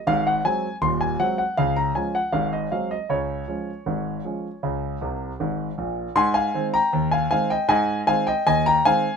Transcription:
<<
  \new Staff \with { instrumentName = "Grand piano" } { \time 2/4 \key des \major \tempo 4 = 79 f''16 ges''16 aes''8 c'''16 aes''16 ges''16 ges''16 | f''16 bes''16 aes''16 ges''16 f''16 ees''16 f''16 ees''16 | des''2~ | des''4 r4 |
\key aes \major <aes'' c'''>16 <f'' aes''>8 <g'' bes''>8 <f'' aes''>16 <f'' aes''>16 <ees'' g''>16 | <ees'' aes''>8 <f'' aes''>16 <ees'' g''>16 <ees'' aes''>16 <g'' bes''>16 <f'' aes''>8 | }
  \new Staff \with { instrumentName = "Grand piano" } { \clef bass \time 2/4 \key des \major <aes,, aes,>8 <ges aes c'>8 <ees,, ees,>8 <ges aes c'>8 | <des, des>8 <f aes des'>8 <aes,, aes,>8 <ges aes c'>8 | <des, des>8 <f aes des'>8 <aes,, aes,>8 <f aes des'>8 | <des, des>8 <c, c>8 <aes,, aes,>8 <bes,, bes,>8 |
\key aes \major aes,8 <ees aes c'>8 ees,8 <ees aes c'>8 | aes,8 <ees aes c'>8 ees,8 <ees aes c'>8 | }
>>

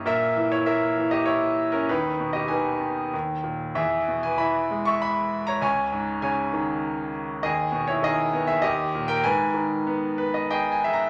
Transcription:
<<
  \new Staff \with { instrumentName = "Grand piano" } { \time 3/4 \key gis \minor \tempo 4 = 98 << { r2. | r2. | r2. | r2. |
r2. | r4. b'16 dis''16 \tuplet 3/2 { g''8 gis''8 ais''8 } | } \\ { <ais' e''>8. <e' cis''>16 <ais' e''>8. <g' dis''>16 <e' cis''>8. <cis' ais'>16 | <dis' b'>8. <g' dis''>16 <b' gis''>4 r4 | <gis' e''>8. <b' gis''>16 <e'' b''>8. <e'' cis'''>16 <e'' b''>8. <cis'' ais''>16 | <cis'' gis''>4 <cis'' gis''>4. r8 |
<gis' dis''>8. <e' cis''>16 <gis' dis''>8. <gis' e''>16 <g' dis''>8. <ais' g''>16 | <b' gis''>2 <gis' dis''>8 <gis' e''>8 | } >> }
  \new Staff \with { instrumentName = "Grand piano" } { \clef bass \time 3/4 \key gis \minor ais,8 e8 ais8 e4. | dis,8 b,8 dis8 b8 dis,8 ais,8 | e,8 b,8 e8 gis4. | cis,8 gis,8 cis8 dis4. |
dis,8 b,8 dis8 b8 dis,8 ais,8 | gis,8 dis8 b2 | }
>>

